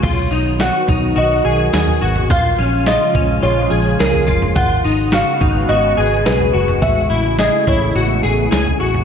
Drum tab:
CC |x---------------|----------------|----------------|----------------|
SD |----o-------o---|----o-------o---|----o-------o---|----o-------o---|
FT |o-----o------o-o|o-----o------o-o|o-----o------o-o|o-----o------o-o|
BD |o-----o---------|o-----o-------o-|o-----o---------|o-----o---------|